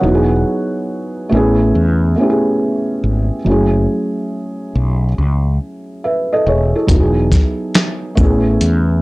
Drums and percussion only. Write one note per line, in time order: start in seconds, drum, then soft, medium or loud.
6.88 kick medium
6.88 closed hi-hat medium
7.32 kick medium
7.32 snare soft
7.32 closed hi-hat soft
7.32 shaker soft
7.75 snare loud
7.75 closed hi-hat medium
8.17 kick loud
8.17 shaker soft
8.61 closed hi-hat medium